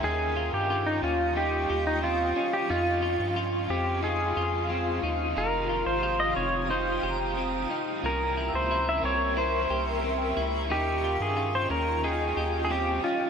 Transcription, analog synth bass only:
\new Staff \with { instrumentName = "Analog synth bass" } { \clef bass \time 4/4 \key ees \mixolydian \tempo 4 = 90 ees,8. g,8. ees,4 ees,4 r8 | f,8. g,8. f,4 f,4 ees,8 | f,,8. aes,,8. f,,4 f,,4 r8 | c,8. des,8. c,4 c,4 des,8 |
ees,8. g,8. ees,4 ees,4 r8 | }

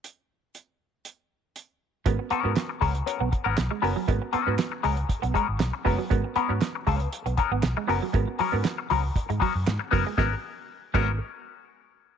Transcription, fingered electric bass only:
\new Staff \with { instrumentName = "Fingered electric bass" } { \clef bass \time 4/4 \key gis \minor \tempo 4 = 118 r1 | gis,,16 r8 gis,16 r8 cis,8 r16 b,,16 r16 gis,,16 b,,16 r16 fis,,16 r16 | gis,,16 r8 gis,16 r8 cis,8 r16 b,,16 r16 gis,,16 b,,16 r16 fis,,16 r16 | gis,,16 r8 gis,16 r8 cis,8 r16 b,,16 r16 gis,,16 b,,16 r16 fis,,16 r16 |
gis,,16 r8 gis,16 r8 cis,8 r16 gis,16 r16 fis,16 gis,16 r16 fis,,16 r16 | gis,,16 r4 r16 gis,,8 r2 | }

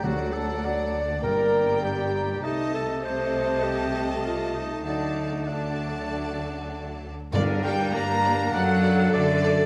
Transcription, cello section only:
\new Staff \with { instrumentName = "Cello section" } { \clef bass \time 4/4 \key g \minor \tempo 4 = 100 d,2 g,2 | c1 | d2.~ d8 r8 | d8 g8 bes4 fis4 d4 | }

